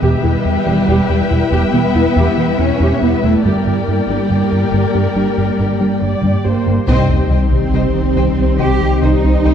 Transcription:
0.01 double bass section E1, analog synth bass E2, synth arpeggio sound E3, ambient pad G3 B3 E4 E5, cello section G3, violin section G4 E5 G5, viola section G4 B4
0.24 double bass section E1, analog synth bass E2, synth arpeggio sound E4, viola section G4
0.45 analog synth bass E2
0.67 double bass section E1, analog synth bass E3, synth arpeggio sound B3, viola section G4
0.88 double bass section E1, analog synth bass E2, synth arpeggio sound E3, viola section G4
1.09 double bass section E1, analog synth bass E2, synth arpeggio sound E4, viola section G4
1.31 double bass section E1, analog synth bass E2, synth arpeggio sound G3, viola section E4
1.52 double bass section E1, analog synth bass E2, synth arpeggio sound E3, viola section G4
1.74 double bass section E1, analog synth bass E3, cello section B3, synth arpeggio sound B3, viola section G4, violin section B4
1.95 double bass section E1, analog synth bass E2, synth arpeggio sound E4, viola section E4
2.16 double bass section E1, analog synth bass E2, synth arpeggio sound E3, viola section G4
2.38 double bass section E1, analog synth bass E3, synth arpeggio sound B3, viola section G4
2.59 double bass section E1, analog synth bass E2, synth arpeggio sound G3, cello section C#4, viola section E4, violin section C#5
2.80 double bass section E1, analog synth bass E2, synth arpeggio sound E3, viola section G4
3.02 double bass section E1, analog synth bass E2, cello section B3, synth arpeggio sound E4, viola section G4, violin section B4
3.24 double bass section E1, analog synth bass E2, synth arpeggio sound G3, cello section A3, viola section E4, violin section A4
3.45 double bass section G1, analog synth bass G2, cello section G3, ambient pad G3 A#3 G4 D5, synth arpeggio sound G3, violin section G4 D5 G5, viola section G4 A#4
3.66 double bass section G1, analog synth bass G2, viola section G4, synth arpeggio sound G4
3.88 analog synth bass G2
4.09 double bass section G1, analog synth bass G3, synth arpeggio sound D4, viola section G4
4.30 double bass section G1, analog synth bass G2, synth arpeggio sound G3, viola section A#4
4.52 double bass section G1, analog synth bass G2, synth arpeggio sound G4
4.73 double bass section G1, analog synth bass G2, synth arpeggio sound A#3
4.94 double bass section G1, analog synth bass G2, synth arpeggio sound G3
5.16 double bass section G1, analog synth bass G3, synth arpeggio sound D4
5.38 double bass section G1, analog synth bass G2, synth arpeggio sound G4
5.59 double bass section G1, analog synth bass G2, synth arpeggio sound G3
5.80 double bass section G1, analog synth bass G3, synth arpeggio sound D4
6.01 double bass section G1, analog synth bass G2, synth arpeggio sound A#3, viola section D5
6.23 double bass section G1, analog synth bass G2, synth arpeggio sound G3
6.45 double bass section G1, analog synth bass G2, cello section A#3, synth arpeggio sound G4, viola section C5
6.67 double bass section G1, analog synth bass G2, synth arpeggio sound A#3
6.87 sub bass C2, analog synth bass C2, double bass section C2, synth arpeggio sound C3, ambient pad D#3 C4 G4 C5, french horn section G3 D#4, cello section C4, viola section C5, violin section D#5 G5, sub drop
7.09 analog synth bass C2
7.29 double bass section C2, analog synth bass C3, synth arpeggio sound G3, viola section C5, violin section D#5 G5
7.52 analog synth bass C2, synth arpeggio sound C3
7.73 double bass section C2, analog synth bass C3, synth arpeggio sound G3, viola section C5, violin section D#5 G5
7.95 analog synth bass C2, synth arpeggio sound D#3
8.16 double bass section C2, analog synth bass C2, synth arpeggio sound C3, viola section C5, violin section D#5 G5
8.37 analog synth bass C2, synth arpeggio sound D#3
8.59 double bass section C2, analog synth bass C2, synth arpeggio sound C3, cello section G4, viola section C5, violin section D#5 G5
8.80 analog synth bass C2, synth arpeggio sound D#3
9.01 double bass section C2, analog synth bass C2, synth arpeggio sound C4, cello section D#4, viola section C5, violin section D#5 G5
9.23 analog synth bass C2, synth arpeggio sound C3
9.44 double bass section C2, analog synth bass C2, viola section C5, violin section D#5 G5

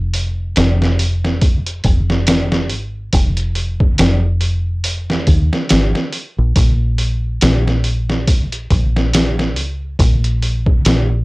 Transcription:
Already playing: fingered electric bass F1
0.14 open hi-hat
0.56 fingered electric bass F1, snare, open hi-hat
0.82 snare
0.99 open hi-hat
1.25 snare
1.41 kick, open hi-hat
1.66 closed hi-hat
1.84 fingered electric bass F1, kick, open hi-hat
2.10 snare
2.27 snare, open hi-hat
2.52 snare
2.69 fingered electric bass G#1, open hi-hat
3.13 fingered electric bass F1, kick, open hi-hat
3.37 closed hi-hat
3.55 open hi-hat
3.80 kick
3.98 fingered electric bass F1, snare, open hi-hat
4.41 open hi-hat
4.84 open hi-hat
5.10 snare
5.27 fingered electric bass D#2, kick, open hi-hat
5.53 snare
5.69 fingered electric bass G#1, snare, open hi-hat
5.95 snare
6.12 open hi-hat
6.38 fingered electric bass A#1
6.56 fingered electric bass A#1, kick, open hi-hat
6.98 open hi-hat
7.41 fingered electric bass A#1, snare, open hi-hat
7.67 snare
7.84 open hi-hat
8.10 snare
8.27 kick, open hi-hat
8.52 closed hi-hat
8.70 fingered electric bass A#1, kick, open hi-hat
8.96 snare
9.13 snare, open hi-hat
9.39 snare
9.56 fingered electric bass C#2, open hi-hat
9.99 fingered electric bass A#1, kick, open hi-hat
10.24 closed hi-hat
10.42 open hi-hat
10.66 kick
10.85 fingered electric bass A#1, snare, open hi-hat

